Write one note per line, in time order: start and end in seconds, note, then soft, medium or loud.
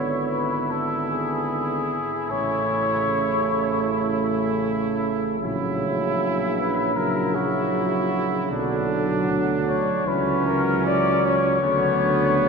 0.00 2.02 G#1 soft
0.00 2.02 D3 soft
0.00 1.98 B3 soft
0.00 5.24 E4 soft
0.00 0.28 C#5 medium
0.31 0.72 B4 medium
0.71 1.10 A4 medium
1.11 2.32 G#4 medium
2.30 5.37 A1 soft
2.30 5.37 C#3 soft
2.30 5.37 A3 soft
2.30 4.25 C#5 medium
5.40 8.47 A#1 soft
5.40 6.92 C#3 medium
5.40 6.92 F#3 soft
5.40 6.92 E4 medium
6.58 6.98 B4 medium
6.95 8.52 C#3 soft
6.95 8.48 F#3 medium
6.95 8.48 E4 medium
6.95 7.37 A#4 medium
7.35 8.51 F#4 medium
8.50 9.30 B1 medium
8.50 10.08 D3 medium
8.50 9.90 F#3 medium
8.50 10.04 D4 medium
9.29 9.90 D2 medium
9.68 10.09 C#5 medium
10.06 11.60 C#2 medium
10.06 11.45 E3 soft
10.06 11.60 F#3 medium
10.06 11.60 C#4 medium
10.06 10.46 B4 medium
10.47 10.85 A#4 medium
10.87 11.26 D5 medium
11.25 12.49 C#5 medium
11.62 12.49 D2 medium
11.62 12.41 D3 medium
11.62 12.49 F#3 medium
11.62 12.49 B3 medium
12.40 12.49 C#3 soft